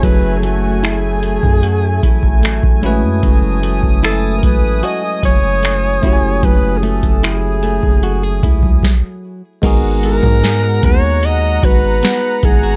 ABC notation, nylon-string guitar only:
X:1
M:4/4
L:1/16
Q:1/4=75
K:F#dor
V:1 name="Nylon-string guitar"
[F,A,EG]2 A,2 E2 A,2 F z E2 A,2 E2 | F,2 A,2 E2 A,2 F z E2 A,2 E2 | F,2 A,2 E2 A,2 F G E2 z4 | [G,^A]2 E F G A B,4 F2 B,2 E F |]